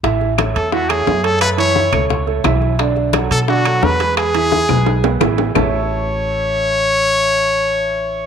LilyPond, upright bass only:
\new Staff \with { instrumentName = "Upright bass" } { \clef bass \time 4/4 \key a \major \tempo 4 = 174 a,,4. e,4. fis,4~ | fis,4. cis,4. b,,4~ | b,,4. b,4. e,4~ | e,4. b,,4. a,,4 |
a,,1~ | a,,1 | }